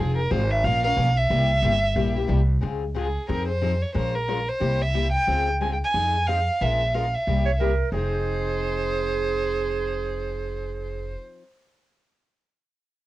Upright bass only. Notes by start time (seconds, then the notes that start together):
Already playing: F1
0.31 G#1
0.64 A#1
0.97 B1
1.30 C2
1.62 G1
1.96 A#1
2.29 C2
2.63 C#2
3.29 F2
3.95 A#1
4.61 C2
5.28 C#2
5.94 F2
6.61 A#1
7.27 C2
7.92 F1